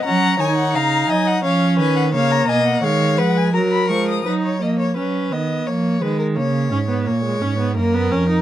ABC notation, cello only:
X:1
M:3/4
L:1/8
Q:1/4=86
K:B
V:1 name="Cello" clef=bass
F, D, C, F, ^E, D, | C, B,, D, ^E, F, G, | F, ^E, F, D, =F, D, | C, G,, A,, G,, F,, ^E,, |]